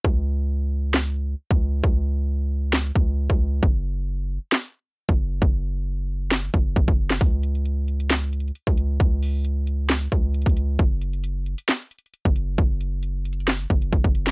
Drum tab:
HH |------------------------------------------------|------------------------------------------------|------------------------------------------------|------------------------------------------------|
CP |------------------------x-----------------------|------------------------x-----------------------|------------------------x-----------------------|------------------------x--------------------x--|
SD |------------------------o-----------------------|------------------------o-----------------------|------------------------o-----------------------|------------------------o--------------------o--|
BD |o--------------------------------------o--------|o-----------------------------o--------o--------|o--------------------------------------o--------|o-----------------------------o-----o--o--------|

HH |x-----x--x--x-----x--x--x-----x-x-x-x-----x-----|x-----o-----x-----x-----x-----x-----x-x-x-x-----|x-----x--x--x-----x--x--x-----x-x-x-x-----x-----|x-----x-----x-----x-x-x-x-----x--x--x-----x-----|
CP |------------------------x-----------------------|------------------------x-----------------------|------------------------x-----------------------|------------------------x--------------------x--|
SD |------------------------o-----------------------|------------------------o-----------------------|------------------------o-----------------------|------------------------o--------------------o--|
BD |o--------------------------------------o--------|o-----------------------------o--------o--------|o--------------------------------------o--------|o-----------------------------o-----o--o--------|